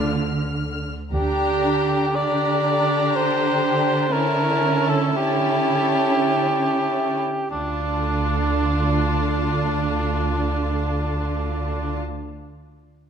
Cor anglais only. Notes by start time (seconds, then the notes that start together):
Already playing: D5
1.14 G4
2.16 D5
3.16 C5
4.12 A#4
4.89 A4
5.17 G4
7.51 D4